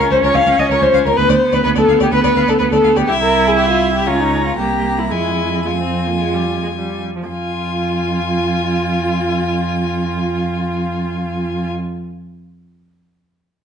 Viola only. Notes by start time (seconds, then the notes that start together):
Already playing: C#4
1.17 B3
3.08 E4
4.07 C#4
4.58 A#3
5.11 G#3
5.65 G#3
5.78 C4
6.07 A#3
6.20 G#3
6.34 G3
6.62 G#3
6.75 G3
7.16 F3
7.29 F4